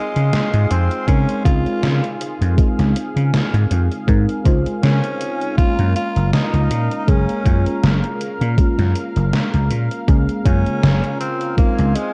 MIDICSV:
0, 0, Header, 1, 7, 480
1, 0, Start_track
1, 0, Key_signature, -5, "major"
1, 0, Tempo, 750000
1, 1653, Time_signature, 4, 2, 24, 8
1, 7765, End_track
2, 0, Start_track
2, 0, Title_t, "Analog synth pad"
2, 0, Program_c, 0, 89
2, 0, Note_on_c, 0, 68, 76
2, 0, Note_on_c, 0, 77, 67
2, 0, Note_on_c, 0, 84, 86
2, 1635, Note_off_c, 0, 84, 0
2, 3548, Note_off_c, 0, 68, 0
2, 3567, Note_on_c, 0, 70, 81
2, 7384, Note_off_c, 0, 70, 0
2, 7411, Note_on_c, 0, 80, 71
2, 7412, Note_on_c, 0, 72, 76
2, 7765, Note_off_c, 0, 72, 0
2, 7765, Note_off_c, 0, 77, 0
2, 7765, Note_off_c, 0, 80, 0
2, 7765, End_track
3, 0, Start_track
3, 0, Title_t, "Tenor saxophone"
3, 0, Program_c, 1, 66
3, 0, Note_on_c, 1, 56, 89
3, 452, Note_on_c, 1, 60, 93
3, 462, Note_off_c, 1, 56, 0
3, 692, Note_on_c, 1, 61, 96
3, 701, Note_off_c, 1, 60, 0
3, 923, Note_off_c, 1, 61, 0
3, 927, Note_on_c, 1, 65, 99
3, 1384, Note_off_c, 1, 65, 0
3, 3088, Note_on_c, 1, 61, 91
3, 3545, Note_off_c, 1, 61, 0
3, 3567, Note_on_c, 1, 65, 113
3, 3793, Note_off_c, 1, 65, 0
3, 3812, Note_on_c, 1, 65, 103
3, 4036, Note_off_c, 1, 65, 0
3, 4053, Note_on_c, 1, 63, 94
3, 4534, Note_on_c, 1, 61, 82
3, 4544, Note_off_c, 1, 63, 0
3, 5013, Note_off_c, 1, 61, 0
3, 6691, Note_on_c, 1, 61, 93
3, 7146, Note_off_c, 1, 61, 0
3, 7169, Note_on_c, 1, 60, 91
3, 7394, Note_off_c, 1, 60, 0
3, 7410, Note_on_c, 1, 58, 92
3, 7651, Note_on_c, 1, 56, 92
3, 7661, Note_off_c, 1, 58, 0
3, 7765, Note_off_c, 1, 56, 0
3, 7765, End_track
4, 0, Start_track
4, 0, Title_t, "FM electric piano"
4, 0, Program_c, 2, 5
4, 0, Control_c, 2, 64, 127
4, 0, Note_on_c, 2, 56, 77
4, 0, Note_on_c, 2, 60, 75
4, 0, Note_on_c, 2, 63, 74
4, 0, Note_on_c, 2, 65, 89
4, 661, Note_off_c, 2, 56, 0
4, 664, Note_off_c, 2, 60, 0
4, 668, Note_off_c, 2, 63, 0
4, 671, Note_off_c, 2, 65, 0
4, 687, Note_on_c, 2, 56, 85
4, 690, Note_on_c, 2, 60, 79
4, 693, Note_on_c, 2, 63, 76
4, 696, Note_on_c, 2, 70, 93
4, 832, Note_off_c, 2, 56, 0
4, 834, Note_off_c, 2, 60, 0
4, 835, Note_off_c, 2, 63, 0
4, 837, Note_off_c, 2, 70, 0
4, 922, Note_on_c, 2, 56, 84
4, 927, Note_on_c, 2, 60, 79
4, 934, Note_on_c, 2, 63, 82
4, 941, Note_on_c, 2, 65, 96
4, 1621, Note_off_c, 2, 56, 0
4, 1624, Note_off_c, 2, 60, 0
4, 1627, Note_off_c, 2, 63, 0
4, 1631, Note_off_c, 2, 65, 0
4, 1640, Note_on_c, 2, 56, 82
4, 1647, Note_on_c, 2, 60, 76
4, 1652, Note_on_c, 2, 63, 76
4, 1659, Note_on_c, 2, 65, 89
4, 2580, Note_off_c, 2, 56, 0
4, 2584, Note_off_c, 2, 60, 0
4, 2586, Note_off_c, 2, 63, 0
4, 2590, Note_off_c, 2, 65, 0
4, 2605, Note_on_c, 2, 56, 85
4, 2609, Note_on_c, 2, 60, 79
4, 2612, Note_on_c, 2, 63, 78
4, 2615, Note_on_c, 2, 70, 90
4, 2751, Note_off_c, 2, 56, 0
4, 2753, Note_off_c, 2, 60, 0
4, 2755, Note_off_c, 2, 63, 0
4, 2756, Note_off_c, 2, 70, 0
4, 2842, Note_on_c, 2, 56, 91
4, 2848, Note_on_c, 2, 72, 80
4, 2854, Note_on_c, 2, 63, 82
4, 2860, Note_on_c, 2, 65, 97
4, 3541, Note_off_c, 2, 56, 0
4, 3544, Note_off_c, 2, 72, 0
4, 3547, Note_off_c, 2, 63, 0
4, 3550, Note_off_c, 2, 65, 0
4, 3561, Note_on_c, 2, 56, 84
4, 3568, Note_on_c, 2, 58, 75
4, 3574, Note_on_c, 2, 61, 76
4, 3580, Note_on_c, 2, 65, 93
4, 3581, Control_c, 2, 64, 0
4, 3714, Control_c, 2, 64, 127
4, 4501, Note_off_c, 2, 56, 0
4, 4504, Note_off_c, 2, 58, 0
4, 4507, Note_off_c, 2, 61, 0
4, 4510, Note_off_c, 2, 65, 0
4, 4525, Note_on_c, 2, 56, 88
4, 4529, Note_on_c, 2, 58, 78
4, 4532, Note_on_c, 2, 61, 80
4, 4535, Note_on_c, 2, 68, 97
4, 4671, Note_off_c, 2, 56, 0
4, 4673, Note_off_c, 2, 58, 0
4, 4675, Note_off_c, 2, 61, 0
4, 4676, Note_off_c, 2, 68, 0
4, 4762, Note_on_c, 2, 56, 87
4, 4769, Note_on_c, 2, 58, 80
4, 4776, Note_on_c, 2, 61, 81
4, 4781, Note_on_c, 2, 65, 101
4, 5461, Note_off_c, 2, 56, 0
4, 5465, Note_off_c, 2, 58, 0
4, 5468, Note_off_c, 2, 61, 0
4, 5471, Note_off_c, 2, 65, 0
4, 5484, Note_on_c, 2, 56, 78
4, 5490, Note_on_c, 2, 58, 77
4, 5497, Note_on_c, 2, 61, 76
4, 5504, Note_on_c, 2, 65, 91
4, 6422, Note_off_c, 2, 56, 0
4, 6425, Note_off_c, 2, 58, 0
4, 6429, Note_off_c, 2, 61, 0
4, 6432, Note_off_c, 2, 65, 0
4, 6445, Note_on_c, 2, 56, 85
4, 6449, Note_on_c, 2, 58, 79
4, 6451, Note_on_c, 2, 61, 77
4, 6454, Note_on_c, 2, 68, 95
4, 6591, Note_off_c, 2, 56, 0
4, 6593, Note_off_c, 2, 58, 0
4, 6594, Note_off_c, 2, 61, 0
4, 6596, Note_off_c, 2, 68, 0
4, 6682, Note_on_c, 2, 56, 89
4, 6687, Note_on_c, 2, 58, 82
4, 6693, Note_on_c, 2, 49, 79
4, 6700, Note_on_c, 2, 65, 95
4, 7381, Note_off_c, 2, 56, 0
4, 7384, Note_off_c, 2, 58, 0
4, 7387, Note_off_c, 2, 49, 0
4, 7390, Note_off_c, 2, 65, 0
4, 7402, Note_on_c, 2, 56, 79
4, 7407, Note_on_c, 2, 60, 76
4, 7414, Note_on_c, 2, 63, 75
4, 7420, Control_c, 2, 64, 0
4, 7421, Note_on_c, 2, 65, 91
4, 7538, Control_c, 2, 64, 127
4, 7765, Note_off_c, 2, 56, 0
4, 7765, Note_off_c, 2, 60, 0
4, 7765, Note_off_c, 2, 63, 0
4, 7765, Note_off_c, 2, 65, 0
4, 7765, End_track
5, 0, Start_track
5, 0, Title_t, "Slap bass"
5, 0, Program_c, 3, 36
5, 104, Note_on_c, 3, 49, 75
5, 193, Note_off_c, 3, 49, 0
5, 343, Note_on_c, 3, 44, 76
5, 432, Note_off_c, 3, 44, 0
5, 454, Note_on_c, 3, 41, 82
5, 560, Note_off_c, 3, 41, 0
5, 691, Note_on_c, 3, 49, 76
5, 799, Note_off_c, 3, 49, 0
5, 931, Note_on_c, 3, 37, 83
5, 1039, Note_off_c, 3, 37, 0
5, 1171, Note_on_c, 3, 49, 90
5, 1279, Note_off_c, 3, 49, 0
5, 1543, Note_on_c, 3, 41, 95
5, 1632, Note_off_c, 3, 41, 0
5, 1784, Note_on_c, 3, 37, 96
5, 1873, Note_off_c, 3, 37, 0
5, 2023, Note_on_c, 3, 49, 77
5, 2112, Note_off_c, 3, 49, 0
5, 2262, Note_on_c, 3, 44, 78
5, 2352, Note_off_c, 3, 44, 0
5, 2373, Note_on_c, 3, 41, 83
5, 2480, Note_off_c, 3, 41, 0
5, 2610, Note_on_c, 3, 44, 95
5, 2719, Note_off_c, 3, 44, 0
5, 2851, Note_on_c, 3, 37, 90
5, 2959, Note_off_c, 3, 37, 0
5, 3094, Note_on_c, 3, 49, 77
5, 3201, Note_off_c, 3, 49, 0
5, 3705, Note_on_c, 3, 42, 97
5, 3793, Note_off_c, 3, 42, 0
5, 3943, Note_on_c, 3, 30, 78
5, 4033, Note_off_c, 3, 30, 0
5, 4183, Note_on_c, 3, 37, 78
5, 4273, Note_off_c, 3, 37, 0
5, 4293, Note_on_c, 3, 46, 86
5, 4400, Note_off_c, 3, 46, 0
5, 4532, Note_on_c, 3, 30, 77
5, 4639, Note_off_c, 3, 30, 0
5, 4772, Note_on_c, 3, 42, 86
5, 4879, Note_off_c, 3, 42, 0
5, 5013, Note_on_c, 3, 30, 89
5, 5120, Note_off_c, 3, 30, 0
5, 5384, Note_on_c, 3, 46, 96
5, 5473, Note_off_c, 3, 46, 0
5, 5623, Note_on_c, 3, 42, 94
5, 5712, Note_off_c, 3, 42, 0
5, 5864, Note_on_c, 3, 30, 77
5, 5953, Note_off_c, 3, 30, 0
5, 6104, Note_on_c, 3, 37, 78
5, 6193, Note_off_c, 3, 37, 0
5, 6212, Note_on_c, 3, 46, 81
5, 6319, Note_off_c, 3, 46, 0
5, 6451, Note_on_c, 3, 37, 92
5, 6559, Note_off_c, 3, 37, 0
5, 6691, Note_on_c, 3, 42, 91
5, 6799, Note_off_c, 3, 42, 0
5, 6932, Note_on_c, 3, 30, 77
5, 7040, Note_off_c, 3, 30, 0
5, 7545, Note_on_c, 3, 37, 97
5, 7633, Note_off_c, 3, 37, 0
5, 7765, End_track
6, 0, Start_track
6, 0, Title_t, "Muted slap bass strokes"
6, 1063, Note_on_c, 9, 29, 41
6, 1127, Note_off_c, 9, 29, 0
6, 1650, Note_on_c, 9, 29, 40
6, 1714, Note_off_c, 9, 29, 0
6, 2985, Note_on_c, 9, 29, 42
6, 3049, Note_off_c, 9, 29, 0
6, 3572, Note_on_c, 9, 29, 40
6, 3636, Note_off_c, 9, 29, 0
6, 4905, Note_on_c, 9, 29, 42
6, 4969, Note_off_c, 9, 29, 0
6, 5491, Note_on_c, 9, 29, 41
6, 5555, Note_off_c, 9, 29, 0
6, 6823, Note_on_c, 9, 29, 41
6, 6887, Note_off_c, 9, 29, 0
6, 7412, Note_on_c, 9, 29, 41
6, 7476, Note_off_c, 9, 29, 0
6, 7765, End_track
7, 0, Start_track
7, 0, Title_t, "Drums"
7, 103, Note_on_c, 9, 42, 40
7, 167, Note_off_c, 9, 42, 0
7, 212, Note_on_c, 9, 38, 114
7, 212, Note_on_c, 9, 42, 66
7, 276, Note_off_c, 9, 38, 0
7, 276, Note_off_c, 9, 42, 0
7, 343, Note_on_c, 9, 42, 39
7, 407, Note_off_c, 9, 42, 0
7, 452, Note_on_c, 9, 42, 98
7, 516, Note_off_c, 9, 42, 0
7, 584, Note_on_c, 9, 42, 38
7, 648, Note_off_c, 9, 42, 0
7, 691, Note_on_c, 9, 36, 112
7, 694, Note_on_c, 9, 42, 67
7, 755, Note_off_c, 9, 36, 0
7, 758, Note_off_c, 9, 42, 0
7, 824, Note_on_c, 9, 42, 39
7, 888, Note_off_c, 9, 42, 0
7, 930, Note_on_c, 9, 36, 100
7, 933, Note_on_c, 9, 42, 90
7, 994, Note_off_c, 9, 36, 0
7, 997, Note_off_c, 9, 42, 0
7, 1064, Note_on_c, 9, 42, 39
7, 1128, Note_off_c, 9, 42, 0
7, 1172, Note_on_c, 9, 38, 113
7, 1172, Note_on_c, 9, 42, 65
7, 1236, Note_off_c, 9, 38, 0
7, 1236, Note_off_c, 9, 42, 0
7, 1304, Note_on_c, 9, 42, 39
7, 1368, Note_off_c, 9, 42, 0
7, 1413, Note_on_c, 9, 42, 94
7, 1477, Note_off_c, 9, 42, 0
7, 1545, Note_on_c, 9, 42, 39
7, 1609, Note_off_c, 9, 42, 0
7, 1650, Note_on_c, 9, 36, 117
7, 1654, Note_on_c, 9, 42, 64
7, 1714, Note_off_c, 9, 36, 0
7, 1718, Note_off_c, 9, 42, 0
7, 1785, Note_on_c, 9, 38, 36
7, 1785, Note_on_c, 9, 42, 38
7, 1849, Note_off_c, 9, 38, 0
7, 1849, Note_off_c, 9, 42, 0
7, 1894, Note_on_c, 9, 42, 91
7, 1958, Note_off_c, 9, 42, 0
7, 2025, Note_on_c, 9, 42, 39
7, 2089, Note_off_c, 9, 42, 0
7, 2135, Note_on_c, 9, 38, 115
7, 2135, Note_on_c, 9, 42, 66
7, 2199, Note_off_c, 9, 38, 0
7, 2199, Note_off_c, 9, 42, 0
7, 2265, Note_on_c, 9, 42, 41
7, 2329, Note_off_c, 9, 42, 0
7, 2373, Note_on_c, 9, 42, 96
7, 2437, Note_off_c, 9, 42, 0
7, 2505, Note_on_c, 9, 42, 40
7, 2569, Note_off_c, 9, 42, 0
7, 2610, Note_on_c, 9, 36, 116
7, 2614, Note_on_c, 9, 42, 66
7, 2674, Note_off_c, 9, 36, 0
7, 2678, Note_off_c, 9, 42, 0
7, 2745, Note_on_c, 9, 42, 38
7, 2809, Note_off_c, 9, 42, 0
7, 2851, Note_on_c, 9, 36, 105
7, 2852, Note_on_c, 9, 42, 89
7, 2915, Note_off_c, 9, 36, 0
7, 2916, Note_off_c, 9, 42, 0
7, 2984, Note_on_c, 9, 42, 41
7, 3048, Note_off_c, 9, 42, 0
7, 3094, Note_on_c, 9, 38, 115
7, 3094, Note_on_c, 9, 42, 70
7, 3158, Note_off_c, 9, 38, 0
7, 3158, Note_off_c, 9, 42, 0
7, 3224, Note_on_c, 9, 42, 38
7, 3288, Note_off_c, 9, 42, 0
7, 3333, Note_on_c, 9, 42, 95
7, 3397, Note_off_c, 9, 42, 0
7, 3465, Note_on_c, 9, 42, 40
7, 3529, Note_off_c, 9, 42, 0
7, 3571, Note_on_c, 9, 36, 122
7, 3574, Note_on_c, 9, 42, 65
7, 3635, Note_off_c, 9, 36, 0
7, 3638, Note_off_c, 9, 42, 0
7, 3704, Note_on_c, 9, 42, 39
7, 3768, Note_off_c, 9, 42, 0
7, 3814, Note_on_c, 9, 42, 95
7, 3878, Note_off_c, 9, 42, 0
7, 3944, Note_on_c, 9, 42, 38
7, 4008, Note_off_c, 9, 42, 0
7, 4054, Note_on_c, 9, 38, 118
7, 4054, Note_on_c, 9, 42, 63
7, 4118, Note_off_c, 9, 38, 0
7, 4118, Note_off_c, 9, 42, 0
7, 4185, Note_on_c, 9, 42, 39
7, 4249, Note_off_c, 9, 42, 0
7, 4294, Note_on_c, 9, 42, 94
7, 4358, Note_off_c, 9, 42, 0
7, 4426, Note_on_c, 9, 42, 39
7, 4490, Note_off_c, 9, 42, 0
7, 4532, Note_on_c, 9, 36, 119
7, 4534, Note_on_c, 9, 42, 68
7, 4596, Note_off_c, 9, 36, 0
7, 4598, Note_off_c, 9, 42, 0
7, 4666, Note_on_c, 9, 42, 38
7, 4730, Note_off_c, 9, 42, 0
7, 4772, Note_on_c, 9, 36, 111
7, 4774, Note_on_c, 9, 42, 89
7, 4836, Note_off_c, 9, 36, 0
7, 4838, Note_off_c, 9, 42, 0
7, 4905, Note_on_c, 9, 42, 40
7, 4969, Note_off_c, 9, 42, 0
7, 5014, Note_on_c, 9, 38, 118
7, 5014, Note_on_c, 9, 42, 66
7, 5078, Note_off_c, 9, 38, 0
7, 5078, Note_off_c, 9, 42, 0
7, 5144, Note_on_c, 9, 42, 37
7, 5208, Note_off_c, 9, 42, 0
7, 5254, Note_on_c, 9, 42, 92
7, 5318, Note_off_c, 9, 42, 0
7, 5385, Note_on_c, 9, 42, 41
7, 5449, Note_off_c, 9, 42, 0
7, 5492, Note_on_c, 9, 36, 120
7, 5495, Note_on_c, 9, 42, 62
7, 5556, Note_off_c, 9, 36, 0
7, 5559, Note_off_c, 9, 42, 0
7, 5625, Note_on_c, 9, 38, 35
7, 5625, Note_on_c, 9, 42, 37
7, 5689, Note_off_c, 9, 38, 0
7, 5689, Note_off_c, 9, 42, 0
7, 5732, Note_on_c, 9, 42, 85
7, 5796, Note_off_c, 9, 42, 0
7, 5863, Note_on_c, 9, 42, 36
7, 5927, Note_off_c, 9, 42, 0
7, 5973, Note_on_c, 9, 38, 117
7, 5973, Note_on_c, 9, 42, 62
7, 6037, Note_off_c, 9, 38, 0
7, 6037, Note_off_c, 9, 42, 0
7, 6103, Note_on_c, 9, 42, 37
7, 6167, Note_off_c, 9, 42, 0
7, 6211, Note_on_c, 9, 42, 91
7, 6275, Note_off_c, 9, 42, 0
7, 6343, Note_on_c, 9, 42, 38
7, 6407, Note_off_c, 9, 42, 0
7, 6451, Note_on_c, 9, 36, 118
7, 6452, Note_on_c, 9, 42, 61
7, 6515, Note_off_c, 9, 36, 0
7, 6516, Note_off_c, 9, 42, 0
7, 6585, Note_on_c, 9, 42, 35
7, 6649, Note_off_c, 9, 42, 0
7, 6691, Note_on_c, 9, 36, 108
7, 6692, Note_on_c, 9, 42, 88
7, 6755, Note_off_c, 9, 36, 0
7, 6756, Note_off_c, 9, 42, 0
7, 6825, Note_on_c, 9, 42, 39
7, 6889, Note_off_c, 9, 42, 0
7, 6934, Note_on_c, 9, 38, 124
7, 6934, Note_on_c, 9, 42, 64
7, 6998, Note_off_c, 9, 38, 0
7, 6998, Note_off_c, 9, 42, 0
7, 7064, Note_on_c, 9, 42, 37
7, 7128, Note_off_c, 9, 42, 0
7, 7172, Note_on_c, 9, 42, 88
7, 7236, Note_off_c, 9, 42, 0
7, 7302, Note_on_c, 9, 42, 39
7, 7366, Note_off_c, 9, 42, 0
7, 7411, Note_on_c, 9, 36, 117
7, 7411, Note_on_c, 9, 42, 62
7, 7475, Note_off_c, 9, 36, 0
7, 7475, Note_off_c, 9, 42, 0
7, 7542, Note_on_c, 9, 42, 35
7, 7606, Note_off_c, 9, 42, 0
7, 7651, Note_on_c, 9, 42, 87
7, 7715, Note_off_c, 9, 42, 0
7, 7765, End_track
0, 0, End_of_file